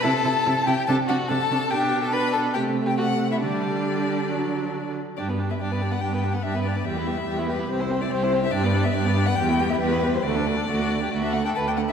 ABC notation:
X:1
M:4/4
L:1/16
Q:1/4=142
K:G
V:1 name="Violin"
a6 g2 a2 f2 a4 | g3 a b2 a2 g3 g f3 e | d12- d2 z2 | d3 e d3 f g3 f e2 d2 |
e6 B2 c3 d c3 e | d3 e d3 f g3 e B3 c | d8- d e f g a g f e |]
V:2 name="Violin"
A6 G2 A2 F2 A4 | G3 A B2 A2 G3 G F3 E | D12- D2 z2 | G B G B G B G B G B G B G B G B |
G E G E G E G E G c G c G c G c | G B G B G B G B G E G E G E G E | F A F A F3 G F3 A B3 z |]
V:3 name="Viola"
E2 E2 E2 E2 D2 D2 D2 D2 | D4 D4 A,8 | G,8 F,6 z2 | D B, D B, D B, D B, D B, D B, D B, D B, |
G, B, G, B, G, B, G, B, C E C E C E C E | D B, D B, D B, D B, G, B, G, B, G, B, G, B, | A, D A, D A, D A, D A, D A, D A, D A, D |]
V:4 name="Cello" clef=bass
C,2 C,2 C,2 C,2 C,2 C,2 C,2 C,2 | B,,8 C,8 | D,12- D,2 z2 | G,,4 G,,4 G,,4 G,,4 |
E,,4 E,,4 C,,4 C,,4 | G,,4 G,,4 E,,4 E,,4 | D,,4 D,,4 D,,4 D,,4 |]